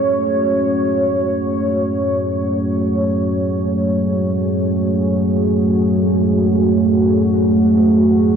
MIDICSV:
0, 0, Header, 1, 4, 480
1, 0, Start_track
1, 0, Key_signature, 3, "minor"
1, 0, Tempo, 500000
1, 8028, End_track
2, 0, Start_track
2, 0, Title_t, "Ambient pad"
2, 0, Program_c, 0, 92
2, 0, Note_on_c, 0, 57, 82
2, 0, Note_on_c, 0, 66, 84
2, 0, Note_on_c, 0, 68, 77
2, 0, Note_on_c, 0, 73, 82
2, 8028, Note_off_c, 0, 57, 0
2, 8028, Note_off_c, 0, 66, 0
2, 8028, Note_off_c, 0, 68, 0
2, 8028, Note_off_c, 0, 73, 0
2, 8028, End_track
3, 0, Start_track
3, 0, Title_t, "Singing bowl"
3, 0, Program_c, 1, 14
3, 0, Note_on_c, 1, 68, 53
3, 7463, Note_on_c, 1, 57, 59
3, 7504, Note_off_c, 1, 68, 0
3, 8028, Note_off_c, 1, 57, 0
3, 8028, End_track
4, 0, Start_track
4, 0, Title_t, "Synth drone"
4, 0, Program_c, 2, 95
4, 0, Note_on_c, 2, 42, 61
4, 0, Note_on_c, 2, 54, 58
4, 8028, Note_off_c, 2, 42, 0
4, 8028, Note_off_c, 2, 54, 0
4, 8028, End_track
0, 0, End_of_file